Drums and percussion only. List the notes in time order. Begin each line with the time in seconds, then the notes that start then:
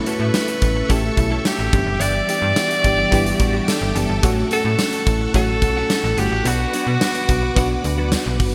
0.06 closed hi-hat
0.34 snare, closed hi-hat, tambourine
0.48 closed hi-hat
0.62 kick, closed hi-hat
0.90 kick, closed hi-hat
1.17 kick, closed hi-hat
1.45 snare, closed hi-hat, tambourine
1.73 kick, closed hi-hat
2.01 closed hi-hat
2.29 closed hi-hat
2.56 snare, closed hi-hat, tambourine
2.71 closed hi-hat
2.84 kick, closed hi-hat
3.12 kick, closed hi-hat
3.26 closed hi-hat
3.40 kick, closed hi-hat
3.68 snare, closed hi-hat, tambourine
3.96 closed hi-hat
4.23 kick, closed hi-hat
4.51 closed hi-hat
4.79 snare, closed hi-hat, tambourine
4.93 closed hi-hat
5.07 kick, closed hi-hat
5.34 kick, closed hi-hat
5.62 kick, closed hi-hat
5.90 snare, closed hi-hat, tambourine
6.18 closed hi-hat
6.45 closed hi-hat
6.74 closed hi-hat
7.01 snare, closed hi-hat, tambourine
7.15 closed hi-hat
7.29 kick, closed hi-hat
7.56 kick, closed hi-hat
7.84 closed hi-hat
8.12 snare, closed hi-hat, tambourine
8.40 kick, open hi-hat